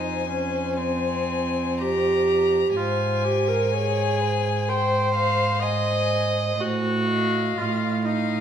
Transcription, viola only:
Already playing: D#4
0.30 C#4
0.77 C4
1.80 G4
2.77 F4
3.24 G4
3.48 A#4
3.73 G#4
4.68 C5
5.63 D#5
6.60 F#4
7.58 F4
8.05 D#4

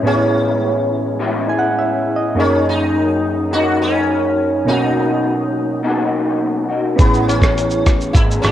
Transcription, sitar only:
0.07 C#4
2.40 C#4
2.69 D#4
3.53 F#4
3.82 C#4
4.68 D#4
6.99 B3
7.28 C#4
8.13 E4
8.42 D#4

